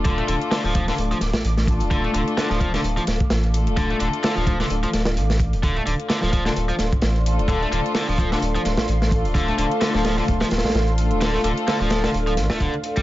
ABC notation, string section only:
X:1
M:4/4
L:1/16
Q:"Swing 16ths" 1/4=129
K:Dm
V:1 name="String section"
[A,DFA]6- [A,DFA] [A,DFA] z6 [A,DFA]2- | [A,DFA]6- [A,DFA] [A,DFA] z6 [A,DFA]2- | [A,DFA]6- [A,DFA] [A,DFA] z8 | z6 z [A,DFA] z6 [A,DFA]2- |
[A,DFA]6- [A,DFA] [A,DFA] z6 [A,DFA]2- | [A,DFA]6- [A,DFA] [A,DFA] z6 [A,DFA]2- | [A,DFA]6- [A,DFA] [A,DFA] z8 |]